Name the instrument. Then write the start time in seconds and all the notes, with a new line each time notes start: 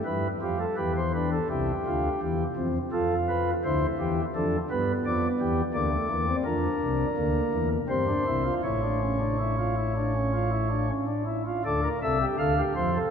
pipe organ
0.05 G2 G3 E4 B4
0.41 F2 F3 F4 G4
0.60 A4
0.76 E2 E3 G4 B4
0.96 C5
1.14 D4 B4
1.32 A4
1.49 C2 C3 E4 G4
1.86 D2 D3 F4
2.22 E2 E3 G4
2.56 F2 F3 C4
2.92 F2 F3 F4 A4
3.29 B4
3.64 D2 D3 E4 C5
3.98 E2 E3 G4
4.35 F2 F3 D4 A4
4.70 G2 G3 B3 B4
5.06 F2 F3 D5
5.40 E2 E3 G4
5.74 D2 D3 A#3 D5
5.92 A3
6.10 E2 E3 A#3
6.28 C4
6.45 F2 F3 D4 A#4
6.82 C2 C3
7.17 D2 D3 A#3
7.53 E2 E3
7.89 G2 G3 C4 C5
8.07 D4
8.27 C2 C3 E4
8.44 F4
8.64 A1 A2 E4 C#5
8.82 D4
9.02 C#4
9.19 D4
9.39 E4
9.58 F4
9.76 E4
9.96 D4
10.15 C#4
10.33 F4
10.51 E4
10.70 D4
10.89 C#4
11.07 D4
11.26 E4
11.46 F4
11.65 D2 D3 A4 D5
11.83 A#4
12.02 C2 C3 A4 E5
12.21 G4
12.39 D2 D3 A4 F5
12.58 G4
12.75 F2 F3 F4 C5
12.95 A4